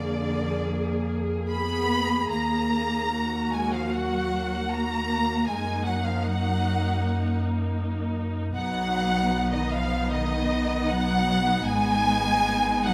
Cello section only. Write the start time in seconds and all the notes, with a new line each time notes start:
Already playing: D3
1.51 B3
2.31 A#3
3.53 G#3
3.72 F3
3.92 F#3
4.70 A#3
5.48 G#3
5.86 F#3
6.05 F3
6.24 F#3
8.56 F#3
9.52 D#3
9.72 F3
10.11 D#3
10.89 F#3
11.66 G#3
12.86 F#3